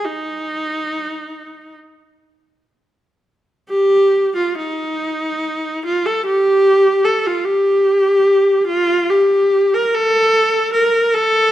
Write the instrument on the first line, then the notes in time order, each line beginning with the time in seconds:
viola
0.05 D#4
3.69 G4
4.36 F4
4.57 D#4
5.86 F4
6.06 A4
6.26 G4
7.04 A4
7.26 F4
7.45 G4
8.67 F4
9.10 G4
9.74 A#4
9.94 A4
10.73 A#4
11.14 A4